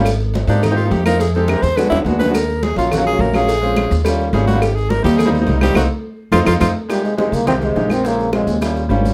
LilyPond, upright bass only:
\new Staff \with { instrumentName = "Upright bass" } { \clef bass \time 4/4 \key aes \mixolydian \tempo 4 = 210 aes,,4. aes,4. f,4~ | f,4. e,4 e,8 ees,4~ | ees,4. bes,,4. bes,,4~ | bes,,4. ees,4. aes,,4~ |
aes,,4. ees,4. c,4 | c,8 r4. f,8 f,8 f,8 r8 | \key bes \dorian r4. c,4. bes,,4~ | bes,,4. ees,4. aes,,4 | }